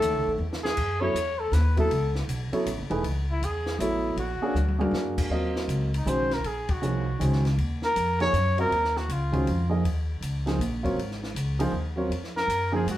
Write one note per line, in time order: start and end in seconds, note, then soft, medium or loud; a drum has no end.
0.00 0.13 D#2 medium
0.00 0.38 D#3 medium
0.00 0.37 A3 medium
0.00 0.35 A4 loud
0.00 0.38 A4 medium
0.00 0.38 C#5 medium
0.00 0.38 E5 medium
0.00 hi-hat pedal medium
0.00 ride medium
0.13 0.26 C#2 soft
0.26 0.37 A1 medium
0.38 0.75 E2 medium
0.53 snare medium
0.63 1.02 G#4 medium
0.63 snare medium
0.77 1.13 F#2 medium
0.77 kick medium
0.77 crash medium
1.01 1.13 F#3 medium
1.01 1.13 B3 medium
1.01 1.14 E4 medium
1.01 1.14 A4 medium
1.01 1.41 C#5 loud
1.01 1.14 C#5 medium
1.14 1.51 E2 medium
1.14 hi-hat pedal medium
1.14 ride medium
1.40 1.55 A4 medium
1.52 1.89 D#2 medium
1.52 1.77 B4 medium
1.52 snare soft
1.52 hi-hat pedal medium
1.52 ride medium
1.76 1.89 F#3 medium
1.76 1.89 B3 medium
1.76 1.89 E4 medium
1.76 1.90 A4 medium
1.76 2.14 A4 medium
1.76 1.90 E5 medium
1.76 kick soft
1.76 ride soft
1.90 2.27 C#2 medium
1.90 ride medium
2.15 snare soft
2.28 2.51 B1 medium
2.28 hi-hat pedal medium
2.28 ride medium
2.52 2.65 F#3 medium
2.52 2.65 B3 medium
2.52 2.65 E4 medium
2.52 2.65 A4 medium
2.52 2.65 C#5 medium
2.52 muted upright bass stroke soft
2.52 ride soft
2.66 2.80 A1 medium
2.66 hi-hat pedal medium
2.66 ride medium
2.78 2.90 F#1 medium
2.90 3.03 E1 medium
2.90 3.02 E3 medium
2.90 3.02 A3 medium
2.90 3.03 D#4 medium
2.90 3.03 G#4 medium
2.90 3.03 B4 medium
2.90 ride soft
3.04 3.40 C#2 medium
3.04 ride medium
3.31 3.46 E4 medium
3.41 3.78 E2 medium
3.41 3.79 G#4 loud
3.41 hi-hat pedal medium
3.41 ride medium
3.66 snare medium
3.79 4.15 A1 medium
3.79 4.17 F#3 medium
3.79 4.18 B3 medium
3.79 4.15 E4 medium
3.79 4.18 E4 soft
3.79 4.18 A4 soft
3.79 4.18 C#5 medium
3.79 hi-hat pedal soft
3.79 ride medium
4.16 4.39 A#1 medium
4.16 4.90 F#4 medium
4.16 ride medium
4.41 4.54 A#3 medium
4.41 4.54 D4 medium
4.41 4.54 F#4 medium
4.41 4.54 G#4 medium
4.41 4.55 C#5 medium
4.41 muted upright bass stroke soft
4.54 4.91 D2 medium
4.54 hi-hat pedal soft
4.54 high tom soft
4.68 high tom medium
4.79 5.28 A#3 medium
4.79 5.28 D4 medium
4.79 5.28 F#4 medium
4.79 5.28 G#4 medium
4.79 5.28 A#4 medium
4.79 high tom medium
4.91 5.29 F#2 medium
4.91 snare medium
5.18 kick medium
5.18 crash medium
5.29 5.67 D#2 medium
5.29 5.88 F#3 medium
5.29 5.88 C4 medium
5.29 5.88 F4 medium
5.29 5.88 A#4 medium
5.29 5.88 D#5 medium
5.56 snare soft
5.68 6.05 C#2 medium
5.68 hi-hat pedal medium
5.68 ride medium
5.94 6.10 D#4 medium
5.94 ride medium
6.06 6.43 B1 medium
6.06 6.28 D#3 medium
6.06 6.28 G#3 soft
6.06 6.28 C#4 soft
6.06 6.28 F#4 soft
6.06 6.29 C5 medium
6.06 6.35 C5 medium
6.06 hi-hat pedal medium
6.31 6.48 A#4 medium
6.31 snare soft
6.31 ride soft
6.43 6.81 A#1 medium
6.43 6.73 G#4 medium
6.43 ride medium
6.69 7.46 F#4 medium
6.69 kick medium
6.69 ride medium
6.82 7.19 C2 medium
6.82 7.04 F3 soft
6.82 7.04 A#3 soft
6.82 7.04 D#4 soft
6.82 7.04 G#4 soft
6.82 7.04 C#5 medium
6.82 hi-hat pedal soft
7.19 7.57 C#2 medium
7.19 7.41 D#3 medium
7.19 7.42 G#3 medium
7.19 7.42 C#4 medium
7.19 7.42 F#4 soft
7.19 7.42 C5 medium
7.19 hi-hat pedal soft
7.19 ride medium
7.33 snare soft
7.45 snare soft
7.45 ride soft
7.58 7.94 D#2 medium
7.58 ride soft
7.82 8.19 A#4 loud
7.82 snare soft
7.96 8.32 F2 medium
7.96 hi-hat pedal medium
7.96 ride medium
8.20 8.32 F3 medium
8.20 8.32 A#3 medium
8.20 8.33 D#4 medium
8.20 8.32 G#4 medium
8.20 8.56 C#5 loud
8.20 8.33 C#5 medium
8.20 ride soft
8.33 8.70 F#2 medium
8.33 hi-hat pedal medium
8.33 ride medium
8.57 8.70 F#3 medium
8.57 8.70 C4 medium
8.57 8.70 F4 medium
8.57 8.70 A#4 medium
8.57 8.99 A#4 medium
8.57 8.70 D#5 medium
8.57 ride soft
8.71 9.08 D#2 medium
8.71 ride soft
8.84 snare soft
8.97 9.14 F#4 medium
8.97 snare soft
9.08 9.45 C#2 medium
9.08 hi-hat pedal soft
9.08 ride medium
9.12 9.73 F4 medium
9.32 9.45 D#3 medium
9.32 9.45 G#3 medium
9.32 9.45 C#4 medium
9.32 9.45 F#4 medium
9.32 9.45 C5 medium
9.32 kick medium
9.32 ride soft
9.47 9.83 F2 medium
9.47 ride soft
9.70 9.82 F3 medium
9.70 9.82 A#3 soft
9.70 9.83 D#4 soft
9.70 9.83 G#4 medium
9.70 9.83 D#5 medium
9.84 10.20 D#2 medium
9.84 ride medium
10.21 10.58 C#2 medium
10.21 hi-hat pedal medium
10.21 ride medium
10.46 10.58 F3 medium
10.46 10.59 A#3 medium
10.46 10.59 D#4 medium
10.46 10.59 G#4 medium
10.46 10.59 C5 medium
10.46 snare soft
10.46 ride soft
10.59 10.96 A#1 medium
10.59 hi-hat pedal soft
10.59 ride medium
10.83 10.96 F#3 medium
10.83 10.96 C4 medium
10.83 10.96 F4 medium
10.83 10.96 A#4 medium
10.83 10.96 C#5 medium
10.83 kick soft
10.83 ride soft
10.96 11.34 G#1 medium
10.96 ride medium
11.11 snare soft
11.23 snare soft
11.35 11.71 C#2 medium
11.35 hi-hat pedal medium
11.35 ride medium
11.59 11.72 F3 medium
11.59 11.72 A#3 medium
11.59 11.72 D#4 medium
11.59 11.72 G#4 medium
11.59 11.72 C5 medium
11.59 ride medium
11.71 12.09 D#2 medium
11.96 12.09 F#3 medium
11.96 12.09 C4 medium
11.96 12.09 F4 medium
11.96 12.09 A#4 medium
11.96 12.10 C#5 medium
12.09 12.47 F2 medium
12.09 ride medium
12.24 snare soft
12.37 12.71 A#4 loud
12.37 snare soft
12.47 12.84 F#2 medium
12.47 hi-hat pedal medium
12.47 ride medium
12.72 12.85 F3 medium
12.72 12.85 A#3 medium
12.72 12.85 D#4 medium
12.72 12.85 G#4 medium
12.72 12.86 G#4 medium
12.72 12.85 C5 medium
12.86 12.98 G#2 medium
12.86 hi-hat pedal medium
12.86 ride medium
12.90 12.98 F#4 medium